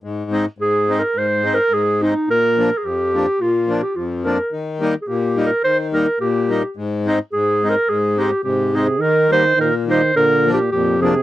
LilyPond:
<<
  \new Staff \with { instrumentName = "Clarinet" } { \time 2/4 \key aes \major \tempo 4 = 107 r4 \tuplet 3/2 { aes'4 bes'8 } | \tuplet 3/2 { c''4 bes'8 } aes'8 ees'8 | bes'8.~ bes'32 aes'32 g'4 | f'8. g'16 f'8 bes'8 |
r8. r32 aes'32 \tuplet 3/2 { g'4 bes'8 } | c''8 bes'8 g'4 | r4 \tuplet 3/2 { aes'4 bes'8 } | aes'8 g'8 g'8 aes'8 |
\key ees \major bes'8 c''8 bes'8 c''8 | \tuplet 3/2 { bes'4 g'8 } g'8 aes'8 | }
  \new Staff \with { instrumentName = "Accordion" } { \time 2/4 \key aes \major << { r8 <aes c' ees'>8 r8 <aes c' ees'>8 | r8 <aes c' ees'>8 r8 <aes c' ees'>8 | r8 <f bes d'>8 r8 <f bes d'>8 | r8 <f bes d'>8 r8 <f bes d'>8 |
r8 <g bes ees'>8 r8 <g bes ees'>8 | r8 <g bes ees'>8 r8 <g bes ees'>8 | r8 <aes c' ees'>8 r8 <aes c' ees'>8 | r8 <aes c' ees'>8 r8 <aes c' ees'>8 |
\key ees \major r8 <g bes ees'>8 r8 <g bes ees'>8 | r8 <f bes d'>8 r8 <f bes d'>8 | } \\ { aes,4 aes,4 | aes,4 aes,4 | bes,4 f,4 | bes,4 f,4 |
ees4 bes,4 | ees4 bes,4 | aes,4 aes,4 | aes,4 aes,4 |
ees4 bes,4 | bes,4 f,4 | } >> }
  \new Staff \with { instrumentName = "Euphonium" } { \clef bass \time 2/4 \key aes \major r2 | r2 | r2 | r2 |
r2 | r2 | r2 | r4 c8 c8 |
\key ees \major ees8 ees8 ees8 ees8 | \tuplet 3/2 { d4 bes,8 } bes,8 c8 | }
>>